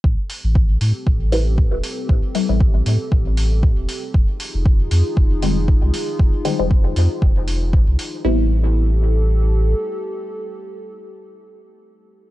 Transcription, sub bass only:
0, 0, Header, 1, 2, 480
1, 0, Start_track
1, 0, Tempo, 512821
1, 38, Time_signature, 4, 2, 24, 8
1, 11517, End_track
2, 0, Start_track
2, 0, Title_t, "Sub bass"
2, 0, Program_c, 0, 38
2, 37, Note_on_c, 0, 33, 93
2, 147, Note_off_c, 0, 33, 0
2, 412, Note_on_c, 0, 33, 85
2, 726, Note_off_c, 0, 33, 0
2, 757, Note_on_c, 0, 45, 86
2, 867, Note_off_c, 0, 45, 0
2, 997, Note_on_c, 0, 33, 78
2, 1572, Note_off_c, 0, 33, 0
2, 1611, Note_on_c, 0, 28, 89
2, 1698, Note_off_c, 0, 28, 0
2, 1958, Note_on_c, 0, 33, 98
2, 2067, Note_off_c, 0, 33, 0
2, 2332, Note_on_c, 0, 33, 86
2, 2646, Note_off_c, 0, 33, 0
2, 2678, Note_on_c, 0, 45, 87
2, 2787, Note_off_c, 0, 45, 0
2, 2917, Note_on_c, 0, 33, 77
2, 3492, Note_off_c, 0, 33, 0
2, 3532, Note_on_c, 0, 28, 88
2, 3618, Note_off_c, 0, 28, 0
2, 3877, Note_on_c, 0, 29, 99
2, 3987, Note_off_c, 0, 29, 0
2, 4252, Note_on_c, 0, 29, 88
2, 4566, Note_off_c, 0, 29, 0
2, 4598, Note_on_c, 0, 41, 90
2, 4707, Note_off_c, 0, 41, 0
2, 4838, Note_on_c, 0, 29, 80
2, 5412, Note_off_c, 0, 29, 0
2, 5452, Note_on_c, 0, 36, 92
2, 5538, Note_off_c, 0, 36, 0
2, 5798, Note_on_c, 0, 29, 98
2, 5907, Note_off_c, 0, 29, 0
2, 6172, Note_on_c, 0, 29, 87
2, 6486, Note_off_c, 0, 29, 0
2, 6517, Note_on_c, 0, 41, 92
2, 6627, Note_off_c, 0, 41, 0
2, 6757, Note_on_c, 0, 29, 82
2, 7332, Note_off_c, 0, 29, 0
2, 7371, Note_on_c, 0, 36, 91
2, 7458, Note_off_c, 0, 36, 0
2, 7717, Note_on_c, 0, 33, 95
2, 9120, Note_off_c, 0, 33, 0
2, 11517, End_track
0, 0, End_of_file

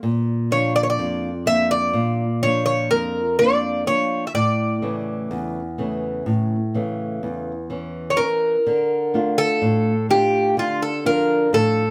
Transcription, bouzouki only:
0, 0, Header, 1, 2, 480
1, 0, Start_track
1, 0, Key_signature, -1, "minor"
1, 0, Tempo, 956938
1, 23, Time_signature, 9, 3, 24, 8
1, 5972, End_track
2, 0, Start_track
2, 0, Title_t, "Bouzouki"
2, 0, Program_c, 0, 25
2, 261, Note_on_c, 0, 73, 84
2, 373, Note_off_c, 0, 73, 0
2, 380, Note_on_c, 0, 74, 92
2, 416, Note_off_c, 0, 74, 0
2, 418, Note_on_c, 0, 73, 76
2, 448, Note_off_c, 0, 73, 0
2, 450, Note_on_c, 0, 74, 83
2, 736, Note_off_c, 0, 74, 0
2, 738, Note_on_c, 0, 76, 103
2, 851, Note_off_c, 0, 76, 0
2, 857, Note_on_c, 0, 74, 97
2, 1199, Note_off_c, 0, 74, 0
2, 1218, Note_on_c, 0, 73, 86
2, 1326, Note_off_c, 0, 73, 0
2, 1332, Note_on_c, 0, 73, 86
2, 1448, Note_off_c, 0, 73, 0
2, 1458, Note_on_c, 0, 70, 94
2, 1683, Note_off_c, 0, 70, 0
2, 1699, Note_on_c, 0, 74, 91
2, 1923, Note_off_c, 0, 74, 0
2, 1942, Note_on_c, 0, 73, 87
2, 2132, Note_off_c, 0, 73, 0
2, 2142, Note_on_c, 0, 76, 57
2, 2179, Note_off_c, 0, 76, 0
2, 2181, Note_on_c, 0, 74, 89
2, 3841, Note_off_c, 0, 74, 0
2, 4064, Note_on_c, 0, 73, 75
2, 4097, Note_on_c, 0, 70, 93
2, 4101, Note_off_c, 0, 73, 0
2, 4705, Note_on_c, 0, 69, 96
2, 4718, Note_off_c, 0, 70, 0
2, 5044, Note_off_c, 0, 69, 0
2, 5069, Note_on_c, 0, 67, 89
2, 5289, Note_off_c, 0, 67, 0
2, 5312, Note_on_c, 0, 65, 81
2, 5420, Note_off_c, 0, 65, 0
2, 5429, Note_on_c, 0, 69, 76
2, 5538, Note_off_c, 0, 69, 0
2, 5549, Note_on_c, 0, 70, 90
2, 5770, Note_off_c, 0, 70, 0
2, 5789, Note_on_c, 0, 69, 95
2, 5972, Note_off_c, 0, 69, 0
2, 5972, End_track
0, 0, End_of_file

